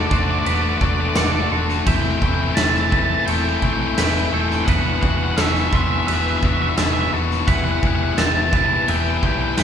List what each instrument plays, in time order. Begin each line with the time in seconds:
Already playing: distorted electric guitar D3 A3 D4 F#4, clean electric guitar A4 E5
0.07 lead electric guitar D5
0.11 picked electric bass E1, distorted electric guitar D3 A3 D4 F#4, clean electric guitar C5, lead electric guitar D5, kick
0.24 lead electric guitar D5
0.31 lead electric guitar D5
0.40 lead electric guitar D5
0.46 picked electric bass E1, distorted electric guitar D3 A3 D4 F#4, clean electric guitar B4, lead electric guitar D5, crash
0.55 lead electric guitar D5
0.62 lead electric guitar D5
0.69 lead electric guitar D5
0.78 picked electric bass E1, distorted electric guitar D3, lead electric guitar D5, kick
0.82 distorted electric guitar A3 D4 F#4, lead electric guitar D5
0.93 lead electric guitar D5
1.01 lead electric guitar D5
1.09 lead electric guitar D5
1.15 picked electric bass E1, distorted electric guitar D3 A3 D4 F#4, clean electric guitar A4, lead electric guitar D5, snare, crash
1.24 lead electric guitar D5
1.32 lead electric guitar D5
1.41 lead electric guitar D5
1.51 picked electric bass E1, distorted electric guitar D3 A3 D4 F#4, clean electric guitar A4
1.69 snare
1.86 picked electric bass E1, distorted electric guitar E3 A3 C4 E4, clean electric guitar E5, lead electric guitar G5, kick, crash
1.96 lead electric guitar G5
2.02 lead electric guitar G5
2.11 lead electric guitar G5
2.19 picked electric bass E1, distorted electric guitar E3 A3 C4, lead electric guitar G5, kick
2.23 distorted electric guitar E4, lead electric guitar G5
2.34 lead electric guitar G5
2.44 lead electric guitar G5
2.52 lead electric guitar G5 A5
2.56 picked electric bass E1, distorted electric guitar E3 A3 C4 E4, clean electric guitar E5, snare, crash
2.63 lead electric guitar A5
2.70 lead electric guitar A5
2.75 lead electric guitar A5, snare
2.84 lead electric guitar A5
2.91 distorted electric guitar E3 A3 C4 E4, clean electric guitar B4, lead electric guitar A5, kick
2.99 lead electric guitar A5
3.05 lead electric guitar A5
3.15 lead electric guitar A5
3.20 lead electric guitar A5
3.26 picked electric bass E1, distorted electric guitar E3 A3 C4 E4, clean electric guitar A4, lead electric guitar G5, crash
3.35 lead electric guitar G5
3.42 lead electric guitar G5
3.49 lead electric guitar G5
3.57 lead electric guitar G5
3.62 picked electric bass B1, distorted electric guitar E3 A3 C4 E4, lead electric guitar G5, kick
3.73 lead electric guitar G5
3.81 lead electric guitar G5
3.88 lead electric guitar G5
3.94 picked electric bass E1, distorted electric guitar E3 A3 C4, lead electric guitar G5, snare, crash
3.99 distorted electric guitar E4, clean electric guitar B4
4.03 lead electric guitar G5
4.11 lead electric guitar G5
4.18 lead electric guitar G5
4.26 lead electric guitar G5
4.32 picked electric bass E1, distorted electric guitar E3 A3 C4 E4, clean electric guitar A4, lead electric guitar G5
4.41 lead electric guitar G5
4.49 lead electric guitar G5, snare
4.55 lead electric guitar G5
4.64 picked electric bass E1, distorted electric guitar E3 B3 D4, lead electric guitar F#5 G5, kick
4.68 distorted electric guitar F#4, clean electric guitar B4, crash
4.73 lead electric guitar F#5
4.79 lead electric guitar F#5
4.86 lead electric guitar F#5
4.94 lead electric guitar F#5
5.02 picked electric bass E1, distorted electric guitar E3 B3 D4 F#4, lead electric guitar F#5, kick
5.10 lead electric guitar F#5
5.17 lead electric guitar F#5
5.24 lead electric guitar F#5
5.31 lead electric guitar F#5
5.36 picked electric bass E1, distorted electric guitar E3 B3 D4 F#4, clean electric guitar A4, lead electric guitar E5, snare, crash
5.44 lead electric guitar E5
5.52 lead electric guitar E5, snare
5.60 lead electric guitar E5
5.69 picked electric bass E1, distorted electric guitar E3, lead electric guitar E5
5.73 distorted electric guitar B3 D4 F#4, lead electric guitar E5, clean electric guitar C6, kick
5.83 lead electric guitar E5
5.92 lead electric guitar E5
5.99 lead electric guitar E5
6.07 picked electric bass E1, distorted electric guitar E3 B3 D4 F#4, clean electric guitar B4, lead electric guitar E5, crash
6.14 lead electric guitar E5
6.22 lead electric guitar E5
6.30 lead electric guitar E5
6.38 lead electric guitar E5
6.43 picked electric bass E1, distorted electric guitar E3 B3 D4 F#4, lead electric guitar E5, kick
6.53 lead electric guitar E5
6.62 lead electric guitar E5
6.69 lead electric guitar E5
6.77 picked electric bass E1, distorted electric guitar E3 B3 D4 F#4, clean electric guitar A4, lead electric guitar E5, snare, crash
6.84 lead electric guitar E5
6.93 lead electric guitar E5
7.01 lead electric guitar E5
7.12 picked electric bass E1, distorted electric guitar E3 B3 D4 F#4, clean electric guitar A4
7.31 snare
7.47 picked electric bass E1, distorted electric guitar E3 B3 E4 G4, clean electric guitar E5, lead electric guitar F#5, kick, crash
7.55 lead electric guitar F#5
7.64 lead electric guitar F#5
7.71 lead electric guitar F#5
7.79 picked electric bass E1, distorted electric guitar E3, lead electric guitar F#5, kick
7.84 distorted electric guitar B3 E4 G4, lead electric guitar F#5
7.95 lead electric guitar F#5
8.03 lead electric guitar F#5
8.13 lead electric guitar F#5
8.18 picked electric bass E1, distorted electric guitar E3 B3 E4 G4, clean electric guitar E5, lead electric guitar A5, snare, crash
8.26 lead electric guitar A5
8.34 lead electric guitar A5
8.42 lead electric guitar A5
8.50 distorted electric guitar E3 B3, clean electric guitar B4, lead electric guitar A5, kick
8.54 distorted electric guitar E4 G4, lead electric guitar A5
8.66 lead electric guitar A5
8.74 lead electric guitar A5
8.83 lead electric guitar A5
8.87 picked electric bass E1, distorted electric guitar E3 B3 E4 G4, clean electric guitar A4, lead electric guitar G5, crash
8.96 lead electric guitar G5
9.02 lead electric guitar G5
9.10 lead electric guitar G5
9.17 lead electric guitar G5
9.23 picked electric bass B1, distorted electric guitar E3 B3 E4 G4, lead electric guitar G5, kick
9.33 lead electric guitar G5
9.42 lead electric guitar G5
9.48 lead electric guitar G5
9.56 picked electric bass E1, distorted electric guitar E3 B3 E4 G4, clean electric guitar B4, lead electric guitar G5, snare, crash